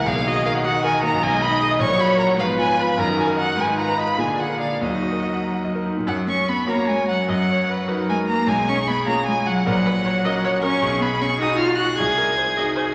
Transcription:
0.06 grand piano B1, cello D#3, viola G#4, violin F5
0.16 grand piano A#3
0.27 grand piano F#4, violin D#5
0.36 grand piano D#5
0.46 grand piano A#4, violin F5
0.55 grand piano F#5
0.64 viola F#4, violin F#5, grand piano D#6
0.73 grand piano F#5
0.84 grand piano A#4, violin G#5
0.93 grand piano D#5
1.02 grand piano A#3, violin A#5
1.13 grand piano F#2
1.22 grand piano B1, viola D#5, violin G#5
1.33 grand piano G#3
1.42 grand piano D#4, violin B5
1.51 grand piano D#5
1.60 grand piano G#4, violin D#6
1.71 grand piano D#5
1.79 grand piano A#1, cello F#3, viola C#5, violin C#6
1.89 grand piano A#3
1.98 grand piano F#4, violin B5
2.09 grand piano C#5
2.17 grand piano A#4, violin A#5
2.27 grand piano F#5
2.36 grand piano G#2, viola B4, violin F5
2.40 cello F3
2.46 grand piano B3
2.57 grand piano F4, violin G#5
2.67 grand piano B4
2.76 grand piano F4
2.80 violin B5
2.87 grand piano F5
2.98 grand piano F#2, cello D#3, viola A#4, violin A#5
3.08 grand piano D#4
3.17 grand piano F#4, violin G#5
3.27 grand piano A#4
3.36 grand piano D#5, violin F#5
3.46 grand piano F#5
3.56 grand piano G#2, cello D#3, viola B4
3.61 violin G#5
3.67 grand piano D#4
3.77 grand piano F4, violin A#5
3.87 grand piano B4
3.98 grand piano D#5, violin B5
4.07 grand piano F5
4.17 grand piano A#2, cello D3, viola G#4, violin G#5
4.28 grand piano D4
4.38 grand piano F4, violin F#5
4.49 grand piano A#4
4.60 grand piano D5, violin F5
4.70 grand piano F5
4.81 grand piano D#2, cello F#3, viola F#4, violin D#5
4.91 grand piano D#4
5.02 grand piano F#4
5.12 grand piano A#4
5.23 grand piano D#5
5.33 grand piano F#5
5.44 grand piano A#5
5.53 grand piano F#5
5.65 grand piano D#5
5.75 grand piano A#4
5.86 grand piano D#4
5.97 grand piano A#2
6.07 grand piano F#2, cello F#3, violin F#5
6.28 cello C#4, violin C#6
6.49 cello B3, violin B5
6.67 cello A#3, grand piano C#4 F#4 A#4, viola C#5, violin A#5
6.88 cello G#3, violin G#5
7.09 cello F#3, violin F#5
7.28 grand piano F#2, cello F#3, viola D#5, violin F#5
7.49 viola C#5
7.70 viola B4
7.88 grand piano D#4 F#4 B4, viola A#4
8.09 cello G#3, violin G#5
8.28 cello A#3, violin A#5
8.47 grand piano B1, cello G#3, viola G#4, violin G#5
8.69 cello C#4, violin C#6
8.87 cello B3, violin B5
9.06 cello A#3, grand piano C#4 F4 G#4, violin A#5
9.26 cello G#3, violin G#5
9.47 cello F#3, violin F#5
9.66 grand piano A#1, cello F#3, viola A#4, violin F#5
9.85 viola B4
10.04 viola C#5
10.24 grand piano C#4 F#4 A#4, viola D#5
10.44 viola C#5
10.62 cello C#4, viola A#4, violin C#6
10.82 grand piano B1, viola G#4
11.01 cello B3, violin B5
11.21 cello C#4, violin C#6
11.39 cello D#4, grand piano D#4 F#4 G#4, viola F#4, violin D#6
11.58 cello F4, violin F6
11.78 cello F#4, violin F#6
11.97 grand piano C2, cello G#4, viola G#4, violin G#6
12.17 viola A#4
12.37 viola C5
12.56 grand piano D#4 F#4 G#4, viola D#5
12.76 viola C5

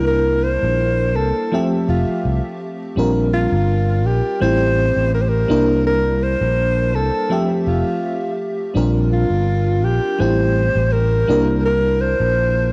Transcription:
Already playing: fretless electric bass C2, fm electric piano G3 A#3 D4 E4 A#4
0.07 alto saxophone A#4
0.43 alto saxophone C5
0.63 fretless electric bass A#1
1.16 fretless electric bass C2, alto saxophone A4
1.52 fm electric piano F3 A3 C4 G4 E5
1.89 fretless electric bass F1, alto saxophone F4
2.25 fretless electric bass C2
2.96 fretless electric bass A#1, fm electric piano G3 C4 D4 F4 A#4
3.33 alto saxophone F4
3.52 fretless electric bass G1
4.06 fretless electric bass A#1, alto saxophone G4
4.40 fretless electric bass A1, fm electric piano G3 A3 C4 E4 G4, alto saxophone C5
4.97 fretless electric bass A1
5.14 alto saxophone A#4
5.22 alto saxophone C5
5.29 alto saxophone A#4
5.48 fretless electric bass C2, fm electric piano G3 A#3 D4 E4 A#4
5.87 alto saxophone A#4
6.23 alto saxophone C5
6.41 fretless electric bass A#1
6.95 fretless electric bass C2, alto saxophone A4
7.29 fm electric piano F3 A3 C4 G4 E5
7.67 fretless electric bass F1, alto saxophone F4
8.74 fretless electric bass A#1, fm electric piano G3 C4 D4 F4 A#4
9.13 alto saxophone F4
9.30 fretless electric bass G1
9.84 fretless electric bass A#1, alto saxophone G4
10.19 fretless electric bass A1, fm electric piano G3 A3 C4 E4 G4, alto saxophone C5
10.75 fretless electric bass A1
10.92 alto saxophone A#4
11.27 fretless electric bass C2, fm electric piano G3 A#3 D4 E4 A#4
11.65 alto saxophone A#4
12.01 alto saxophone C5
12.20 fretless electric bass A#1

